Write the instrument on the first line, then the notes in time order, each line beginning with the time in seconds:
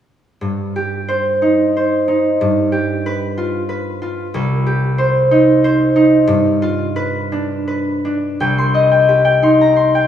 harp
0.41 G2
0.76 G4
1.08 C5
1.42 D#4
1.77 C5
2.08 D#4
2.41 G2
2.72 G4
3.06 B4
3.38 F4
3.69 B4
4.02 F4
4.34 C2
4.66 G4
4.98 C5
5.31 D#4
5.64 C5
5.96 D#4
6.27 G2
6.62 F4
6.96 B4
7.32 D4
7.68 B4
8.05 D4
8.40 C2 G5
8.58 C6
8.74 D#5
8.91 G5
9.09 G4
9.25 G5
9.42 D#4 C6
9.61 A#5
9.76 C6
9.95 G5